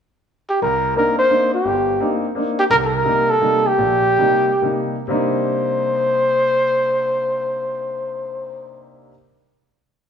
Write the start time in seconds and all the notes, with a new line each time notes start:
0.50 G4
0.62 C2 A#4
0.96 A#3 C4 D4 D#4 A#4
1.19 C5
1.30 A#3 C4 D4 D#4
1.54 G4
1.65 G1
2.00 A#3 C4 D4 D#4
2.35 A#3 C4 D4 D#4
2.59 G4
2.70 C2 C3 A#4
2.85 A4
2.95 A#4
3.05 C3 G3 A#3 D#4
3.30 A4
3.41 C3 G3 A#3 D#4
3.67 G4
3.78 A#1
4.18 C3 G3 A#3 D#4
4.62 C3 G3 A#3 D#4
5.08 C3 G3 A#3 D4 D#4 C5